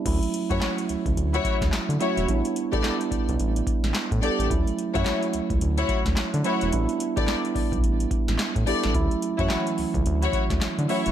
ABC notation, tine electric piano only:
X:1
M:4/4
L:1/16
Q:"Swing 16ths" 1/4=108
K:D
V:1 name="Tine electric piano"
[F,A,CE]2 z [F,A,CE]4- [F,A,CE] z6 [F,A,CF] z | [G,B,DE]2 z [G,B,DE]4- [G,B,DE] z6 [G,B,DG] z | [F,A,CE]2 z [F,A,CE]4- [F,A,CE] z6 [F,A,CE] z | [G,B,DE]2 z [G,B,DE]4- [G,B,DE] z6 [G,B,DE] z |
[F,A,CE]2 z [E,F,A,CE]4- [E,F,A,CE] z6 [F,A,CE] z |]